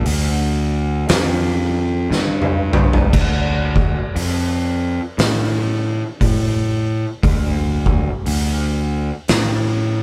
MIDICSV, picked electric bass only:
0, 0, Header, 1, 2, 480
1, 0, Start_track
1, 0, Key_signature, -1, "minor"
1, 0, Tempo, 1025641
1, 1465, Time_signature, 4, 2, 24, 8
1, 4694, End_track
2, 0, Start_track
2, 0, Title_t, "Picked electric bass"
2, 0, Program_c, 0, 34
2, 28, Note_on_c, 0, 38, 88
2, 488, Note_off_c, 0, 38, 0
2, 511, Note_on_c, 0, 41, 102
2, 969, Note_off_c, 0, 41, 0
2, 985, Note_on_c, 0, 43, 87
2, 1261, Note_off_c, 0, 43, 0
2, 1279, Note_on_c, 0, 43, 87
2, 1455, Note_off_c, 0, 43, 0
2, 1466, Note_on_c, 0, 38, 86
2, 1855, Note_off_c, 0, 38, 0
2, 1944, Note_on_c, 0, 41, 92
2, 2334, Note_off_c, 0, 41, 0
2, 2425, Note_on_c, 0, 45, 95
2, 2815, Note_off_c, 0, 45, 0
2, 2906, Note_on_c, 0, 45, 90
2, 3295, Note_off_c, 0, 45, 0
2, 3386, Note_on_c, 0, 38, 87
2, 3775, Note_off_c, 0, 38, 0
2, 3869, Note_on_c, 0, 38, 83
2, 4257, Note_off_c, 0, 38, 0
2, 4348, Note_on_c, 0, 45, 94
2, 4694, Note_off_c, 0, 45, 0
2, 4694, End_track
0, 0, End_of_file